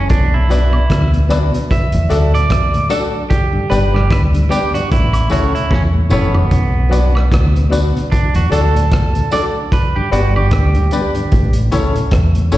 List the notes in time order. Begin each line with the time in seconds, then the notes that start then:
0.10 B1 D4, kick, closed hi-hat
0.34 B2 E4
0.49 F#3 B3 D4 F#4 B4 D5, closed hi-hat, tambourine
0.73 B2, high woodblock
0.90 D2, kick, cross-stick, closed hi-hat
1.13 B2, closed hi-hat
1.29 F#3 B3 D4 F#4 B4 D5, cross-stick, closed hi-hat, tambourine
1.52 B2 B4 D5, closed hi-hat
1.71 E5, kick, closed hi-hat
1.92 D2 E2 A2, closed hi-hat
2.09 D2 F#3 A3 D4 F#4 A4 D5, closed hi-hat, tambourine
2.33 D2 A2 D5, closed hi-hat
2.50 kick, cross-stick, closed hi-hat
2.73 D2 A2, closed hi-hat
2.90 F#3 A3 D4 F#4 A4 D5, closed hi-hat, tambourine
3.30 G4, kick, closed hi-hat
3.53 G2 D3
3.69 G1 G3 B3 D4 G4 B4 D5, closed hi-hat, tambourine
3.94 G2 D3 G4, cross-stick
4.11 D2 B4, kick, cross-stick, closed hi-hat
4.33 G2 D3, closed hi-hat
4.49 G3 B3 D4 G4 B4 D5, closed hi-hat, tambourine
4.73 G2 D3 F#4 B4 D5, closed hi-hat
4.92 A1 E4, kick, closed hi-hat
5.13 A2, closed hi-hat, high woodblock
5.29 C#2 E3 A3 C#4 E4 F#4 A4 C#5, closed hi-hat, tambourine
5.53 A2 E4, closed hi-hat
5.71 E2 C#4, kick, snare
5.94 A2
6.10 F#1 E3 A3 B3 C#4 E4 A4 C#5, mid tom, tambourine
6.34 floor tom, high woodblock
6.51 B1, kick, closed hi-hat
6.74 B2
6.89 F#3 B3 D4 F#4 B4 D5, closed hi-hat, tambourine
7.13 B2, high woodblock
7.17 cross-stick
7.32 D2, kick, cross-stick, closed hi-hat
7.54 B2, closed hi-hat
7.70 F#3 B3 D4 F#4 B4 D5, closed hi-hat, tambourine
7.94 B2 B4 D5, closed hi-hat
8.12 D4, kick, closed hi-hat
8.34 D2 E2 A2 F#4, closed hi-hat
8.50 D2 F#3 A3 D4 F#4 A4 D5, closed hi-hat, tambourine
8.74 D2 A2, closed hi-hat
8.92 kick, cross-stick, closed hi-hat
9.15 D2 A2, closed hi-hat
9.31 F#3 A3 D4 F#4 A4 D5, closed hi-hat, tambourine
9.72 B4, kick, closed hi-hat
9.96 G2 D3 G4
10.11 G1 G3 B3 D4 F#4 G4 B4 D5, closed hi-hat, tambourine
10.36 G2 D3 G4, high woodblock
10.51 D2, kick, cross-stick, closed hi-hat
10.74 G2 D3, closed hi-hat
10.91 G3 B3 D4 G4 B4 D5, closed hi-hat, tambourine
11.15 G2 D3 B4 D5, closed hi-hat
11.32 A1, kick, closed hi-hat
11.53 A2, closed hi-hat
11.72 C#2 E3 A3 C#4 E4 A4 C#5, closed hi-hat, tambourine
11.96 A2, closed hi-hat
12.11 E2, kick, cross-stick, closed hi-hat
12.35 A2, closed hi-hat
12.52 F#1 E3 A3 C#4 E4 A4 C#5, closed hi-hat, tambourine